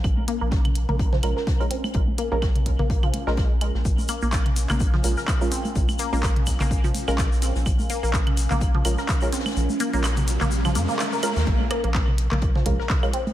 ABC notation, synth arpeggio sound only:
X:1
M:4/4
L:1/16
Q:"Swing 16ths" 1/4=126
K:Bbm
V:1 name="Synth arpeggio sound"
z2 B, B, z3 B, z F, z B z2 C z | z2 B, B, z3 B, z F, z A, z2 A, z | z2 B, B, z3 B, z F, z B z2 C z | z2 B, B, z3 B, z F, z B z2 C z |
z2 B, B, z3 B, z F, z B z2 C z | z2 B, B, z3 B, z F, B, B, z B B z | z2 B, B, z3 B, z F, z B z2 C z |]